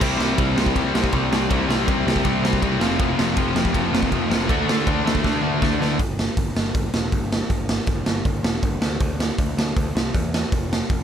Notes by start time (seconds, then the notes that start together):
0.00 C2 C3 G3 C4 E4, kick, crash
0.18 C2 C3 G3 C4, snare
0.38 C2 C3 G3 C4, kick, ride
0.56 C2 C3 G3 C4, snare
0.66 kick
0.75 C2 C3 G3 C4, kick, ride
0.94 C2 C3 G3 C4, snare
1.04 kick
1.12 C2 C3 G3 C4, kick, ride
1.31 C2 C3 G3 C4, snare
1.50 C2 C3 G3 C4 E4, kick, ride
1.68 C2 C3 G3 C4, snare
1.87 C2 C3 G3 C4, kick, ride
2.06 C2 C3 G3 C4, snare
2.16 kick
2.25 C2 C3 G3 C4, kick, ride
2.42 C2 C3 G3 C4, snare
2.53 kick
2.62 C2 C3 G3 C4, kick, ride
2.80 F1 F2 C3 F3 A3 C4 F4, snare
2.99 F1 F2 C3 F3, kick, ride
3.18 F1 F2 C3 F3, snare
3.36 F1 F2 C3 F3, kick, ride
3.55 F1 F2 C3 F3, snare
3.65 kick
3.73 F1 F2 C3 F3, kick, ride
3.92 F1 F2 C3 F3, snare
4.03 kick
4.11 F1 F2 C3 F3, kick, ride
4.29 F1 F2 C3 F3, snare
4.49 D2 D3 A3 D4 F#4, kick, ride
4.66 D2 D3 A3 D4, snare
4.86 D2 D3 A3 D4, kick, ride
5.04 D2 D3 A3 D4, snare
5.15 kick
5.23 D2 D3 A3 D4, kick, snare
5.42 D2 D3 A3 D4
5.62 D2 D3 A3 D4, kick, snare
5.80 D2 D3 A3 D4, snare
5.99 G1, kick, open hi-hat
6.19 snare
6.37 G1, kick, open hi-hat
6.55 G1, snare
6.74 G1, kick, open hi-hat
6.94 E1, snare
7.12 G1, kick, open hi-hat
7.33 snare
7.50 G1, kick, open hi-hat
7.69 snare
7.86 G1, kick, open hi-hat
8.06 G1, snare
8.25 G1, kick, open hi-hat
8.43 E1, snare
8.62 G1, kick, open hi-hat
8.81 D2, snare
9.00 D2, kick, open hi-hat
9.20 snare
9.38 D2, kick, open hi-hat
9.57 D2, snare
9.76 D2, kick, open hi-hat
9.95 C2, snare
10.14 E2, kick, open hi-hat
10.34 snare
10.52 F1, kick, open hi-hat
10.73 snare
10.90 F1, kick, open hi-hat